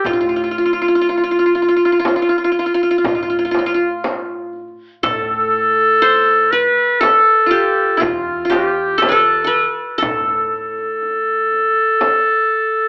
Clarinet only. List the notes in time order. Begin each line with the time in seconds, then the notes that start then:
0.05 F4
5.04 A4
6.52 B4
7.01 A4
8.02 F4
8.51 G4
9.01 A4
10.00 A4